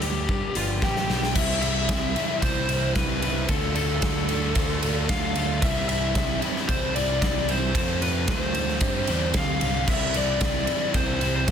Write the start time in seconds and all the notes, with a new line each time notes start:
Already playing: D2 G2 D3 F3 G3 B3 G4
0.02 F3 G3 B3 G4, closed hi-hat
0.29 G2, kick
0.55 G1 F3 G3 B3 F4 G4, closed hi-hat
0.82 A1 F3 G3 B3 G4 G5, kick, snare
0.96 snare
1.08 B1 F3 G3 B3 G4, snare
1.23 snare
1.35 C2 C3 E3 G3 C4 E4 E5, kick, crash
1.62 C3 E3 G3 C4 E4 E5, ride
1.89 C2 C3 E3 G3 C4 E4, kick, snare, ride
2.16 C3 E3 G3 C4 E4, ride
2.42 C2 C3 E3 G3 C4 E4 C5, kick, ride
2.69 C3 E3 G3 C4 E4, ride
2.95 C2 C3 E3 G3 C4 E4 B4, kick, snare, ride
3.22 C3 E3 G3 C4 E4, ride
3.49 D2 D3 A3 D4 F4 A4, kick, ride
3.75 D3 A3 D4 F4 A4, ride
4.02 D2 D3 A3 D4 F4, kick, snare, ride
4.29 D3 A3 D4 F4, ride
4.55 D2 D3 A3 D4 F4, kick, ride
4.83 D3 A3 D4 F4, ride
5.09 D2 D3 A3 D4 F4 F5, kick, snare, ride
5.36 D3 A3 D4 F4, ride
5.62 C2 C3 E3 G3 C4 E4 E5, kick, ride
5.89 C3 E3 G3 C4 E4 E5, ride
6.15 C2 C3 E3 G3 C4 E4, kick, snare, ride
6.42 C3 E3 G3 C4 E4, ride
6.56 snare
6.69 C2 C3 E3 G3 C4 E4 C5, kick, ride
6.95 C3 E3 G3 C4 E4 D5, ride
7.22 C2 C3 E3 G3 C4 E4 D5, kick, snare, ride
7.49 C3 E3 G3 C4 E4 C5, ride
7.74 F2 C3 F3 A3 C4 F4, kick, ride
8.02 F2 C3 F3 A3 C4 F4 B4, ride
8.28 D2 F2 C3 F3 A3 C4 F4 B4, kick, snare, ride
8.40 C5
8.55 F2 C3 F3 A3 C4 F4, ride
8.68 snare
8.81 G2 D3 G3 C4 D4 G4, kick, ride
9.07 E2 G2 D3 G3 C4 D4 G4, ride
9.34 D2 G2 D3 G3 C4 D4 G4 F5, kick, snare, ride
9.61 C2 G2 D3 G3 C4 D4 G4, ride
9.88 C2 C3 E3 G3 C4 E4 E5, kick, crash
10.14 C3 E3 G3 C4 E4 D5, ride
10.41 C2 C3 E3 G3 C4 E4, kick, snare, ride
10.67 C3 E3 G3 C4 E4, ride
10.94 C2 C3 E3 G3 C4 E4 C5, kick, ride
11.21 C3 E3 G3 C4 E4, ride
11.36 C5
11.48 C3 E3 G3, kick, ride